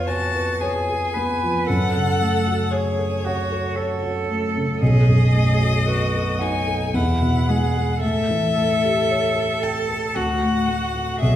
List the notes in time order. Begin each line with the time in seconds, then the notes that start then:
Already playing: F2 F3 B3 G#4 B4 C#5
0.07 F#4 G#5 A5
0.35 B4
0.61 G#4 C#5 G#5
0.90 G#4
1.14 B3 B4
1.43 F3
1.66 F#2 A4 F#5
1.95 C#3
2.21 A3
2.47 F#4
2.72 G#4 C#5
2.99 A4
3.25 F#4 F#5
3.52 A4
3.76 A4 C#5
4.03 F#4
4.30 A3
4.56 C#3
4.81 B1 G#4 D#5
5.08 F#2
5.34 A3
5.61 F#4
5.87 F#4 B4
6.15 A4
6.39 D#4 F#5 G#5
6.67 A4
6.94 E2 E4 F#5
7.21 B2
7.49 G#3 G#4
7.77 G#4
8.01 A2 A4 E5
8.30 E3
8.56 A3
8.84 G4
9.11 C#5
9.35 A4
9.63 G5 A5
9.90 A4
10.15 D2 F#4 F#5
10.43 A2
10.68 A3
10.95 F#4
11.20 B1 G#4 E5